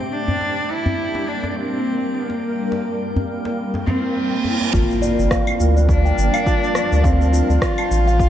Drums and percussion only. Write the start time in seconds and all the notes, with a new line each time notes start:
0.28 djembe bass
0.41 djembe slap
0.86 djembe bass
1.14 djembe slap, djembe tone
1.44 djembe tone
2.30 djembe slap
2.72 djembe slap
3.16 djembe bass
3.45 djembe slap
3.74 djembe slap, djembe tone
3.87 djembe bass
4.45 djembe tone
4.61 djembe slap
4.73 kick, shaker
4.91 shaker
5.03 shaker
5.19 shaker
5.31 kick, cross-stick, shaker
5.47 claves, shaker
5.60 shaker
5.77 shaker
5.89 kick, shaker
6.06 shaker
6.18 shaker
6.34 claves, shaker
6.46 kick, shaker
6.64 shaker
6.75 cross-stick, shaker
6.92 shaker
7.04 kick, shaker
7.21 shaker
7.34 shaker
7.50 shaker
7.62 kick, cross-stick, shaker
7.78 claves, shaker
7.91 shaker
8.08 shaker
8.19 kick, shaker